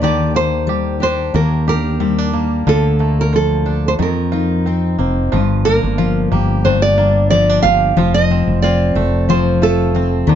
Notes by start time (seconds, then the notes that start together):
Already playing: D#2
0.02 D3 D#3 G4 D5
0.35 A#3 C5
0.67 G3 G4
1.00 D4 G4 C5
1.34 D#2 D#3 A#3 A#4
1.67 D4 G4 A#4
2.00 G3 C4
2.18 D4
2.33 A#3
2.67 D2 D3 F4 A4
2.99 A3 A#3
3.21 A#4
3.33 F3 F4 A4
3.66 D4 A4
3.88 C5
3.99 F2 D#3 F3 A#4
4.32 D#4 F4
4.66 C4
4.99 F1 A#3 C4
5.32 G1 G2 F3 F4
5.65 A#3 D4 A#4
5.83 G1
5.98 F3 F4
6.32 G1 A#3 G4
6.65 G2 D4 C5
6.82 D5
6.98 A#3 D4
7.30 F3 C4 D5
7.49 D4
7.63 G1 F4 G4 F5
7.97 F1 F3 F4
8.14 D#5
8.31 C4
8.47 F1
8.62 C4 F4 D5
8.95 F1 A3 A4
9.29 F3 C4 C5
9.62 A3 F4 A4
9.95 C4
10.27 D#2 D3 D#3